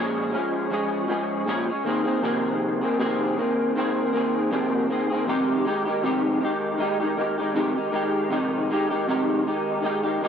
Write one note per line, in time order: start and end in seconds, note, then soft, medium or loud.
0.00 0.33 A#2 medium
0.00 0.30 F3 medium
0.00 0.31 G#3 medium
0.00 0.33 C#4 loud
0.00 0.34 G#4 loud
0.32 0.69 F3 medium
0.32 0.70 G#3 medium
0.32 0.72 C#4 medium
0.32 0.72 G#4 medium
0.70 1.07 F3 medium
0.70 1.08 G#3 medium
0.70 1.09 C#4 medium
0.70 1.10 G#4 medium
1.08 1.46 F3 medium
1.08 1.46 G#3 medium
1.08 1.47 C#4 medium
1.08 1.48 G#4 medium
1.46 1.68 A#2 medium
1.46 1.68 F3 medium
1.46 1.68 G#3 medium
1.46 1.69 C#4 loud
1.46 1.66 G#4 medium
1.67 1.86 G#3 soft
1.67 1.86 C#4 medium
1.67 1.85 G#4 medium
1.84 2.06 D#3 medium
1.84 2.06 A#3 medium
1.84 2.05 C4 medium
1.84 2.03 G#4 medium
2.04 2.22 D#3 medium
2.04 2.23 A#3 soft
2.04 2.23 C4 medium
2.04 2.22 G#4 medium
2.22 2.82 F2 medium
2.22 2.82 C3 medium
2.22 2.82 D#3 medium
2.22 2.83 A#3 medium
2.22 2.82 C4 medium
2.22 2.80 G#4 medium
2.81 2.99 D#3 medium
2.81 2.99 A#3 medium
2.81 3.00 C4 medium
2.81 2.99 G#4 medium
2.99 3.37 F2 medium
2.99 3.37 C3 medium
2.99 3.36 D#3 medium
2.99 3.37 A#3 medium
2.99 3.38 C4 loud
2.99 3.38 G#4 loud
3.37 3.75 D#3 medium
3.37 3.76 A#3 medium
3.37 3.76 C4 medium
3.37 3.77 G#4 medium
3.76 4.12 D#3 medium
3.76 4.13 A#3 medium
3.76 4.14 C4 medium
3.76 4.15 G#4 medium
4.13 4.51 D#3 medium
4.13 4.51 A#3 medium
4.13 4.52 C4 medium
4.13 4.52 G#4 medium
4.51 4.89 F2 medium
4.51 4.89 C3 medium
4.51 4.87 D#3 medium
4.51 4.89 A#3 medium
4.51 4.89 C4 medium
4.51 4.90 G#4 medium
4.88 5.10 D#3 medium
4.88 5.11 A#3 medium
4.88 5.10 C4 medium
4.88 5.09 G#4 medium
5.10 5.27 D#3 soft
5.10 5.28 A#3 soft
5.10 5.28 C4 medium
5.10 5.27 G#4 medium
5.27 5.65 F2 medium
5.27 5.65 C3 medium
5.27 5.63 D#3 medium
5.27 5.64 G#3 medium
5.27 5.65 D#4 medium
5.27 5.66 G4 medium
5.64 5.85 D#3 medium
5.64 5.86 G#3 medium
5.64 5.86 D#4 medium
5.64 5.84 G4 medium
5.85 6.03 D#3 medium
5.85 6.03 G#3 soft
5.85 6.04 D#4 medium
5.85 6.03 G4 medium
6.03 6.41 F2 medium
6.03 6.41 C3 medium
6.03 6.40 D#3 medium
6.03 6.41 G#3 medium
6.03 6.42 D#4 medium
6.03 6.43 G4 loud
6.41 6.77 D#3 medium
6.41 6.78 G#3 medium
6.41 6.79 D#4 medium
6.41 6.80 G4 medium
6.78 7.00 D#3 medium
6.78 7.00 G#3 medium
6.78 6.99 D#4 medium
6.78 6.98 G4 medium
7.00 7.16 D#3 soft
7.00 7.17 G#3 soft
7.00 7.18 D#4 medium
7.00 7.17 G4 medium
7.17 7.38 D#3 medium
7.17 7.39 G#3 medium
7.17 7.38 D#4 medium
7.17 7.36 G4 medium
7.37 7.54 D#3 soft
7.37 7.55 G#3 soft
7.37 7.55 D#4 soft
7.37 7.55 G4 soft
7.55 7.76 F2 medium
7.55 7.76 C3 medium
7.55 7.76 D#3 medium
7.55 7.76 G#3 medium
7.55 7.76 D#4 medium
7.55 7.74 G4 medium
7.76 7.90 D#3 soft
7.76 7.91 G#3 soft
7.76 7.92 D#4 medium
7.76 7.93 G4 medium
7.92 8.30 D#3 medium
7.92 8.30 G#3 medium
7.92 8.31 D#4 medium
7.92 8.31 G4 medium
8.30 8.69 F2 medium
8.30 8.69 C3 medium
8.30 8.68 D#3 medium
8.30 8.69 G#3 medium
8.30 8.70 D#4 medium
8.30 8.70 G4 medium
8.69 8.90 D#3 medium
8.69 8.91 G#3 medium
8.69 8.90 D#4 medium
8.69 8.89 G4 medium
8.90 9.08 D#3 soft
8.90 9.08 G#3 medium
8.90 9.08 D#4 medium
8.90 9.07 G4 medium
9.08 9.46 F2 medium
9.08 9.46 C3 medium
9.08 9.43 D#3 medium
9.08 9.45 G#3 medium
9.08 9.46 D#4 loud
9.08 9.47 G4 loud
9.44 9.81 D#3 medium
9.44 9.82 G#3 medium
9.44 9.83 D#4 medium
9.44 9.84 G4 medium
9.82 10.04 D#3 medium
9.82 10.04 G#3 medium
9.82 10.04 D#4 medium
9.82 10.02 G4 medium
10.03 10.20 D#3 soft
10.03 10.21 G#3 soft
10.03 10.22 D#4 soft
10.03 10.21 G4 medium
10.21 10.28 D#3 medium
10.21 10.28 G#3 medium
10.21 10.28 D#4 medium
10.21 10.28 G4 medium